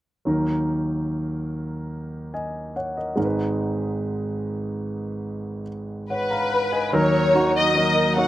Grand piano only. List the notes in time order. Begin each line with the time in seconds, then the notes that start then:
0.25 D#2 D#3 F#3 D#4 A#4
2.34 D#5 G#5
2.76 C#5 F#5
2.97 A#4 D#5
3.15 G#1 G#2 G#3 D#4 A#4
3.25 B4
6.10 C#5 F#5
6.30 F5 A#5
6.72 D#5 G#5
6.93 D#2 D#3 F#3 D#4 A#4
7.35 F#3 D#4 F#4
7.76 F#3 D#4 A#4
8.17 F#3 D#4 F#4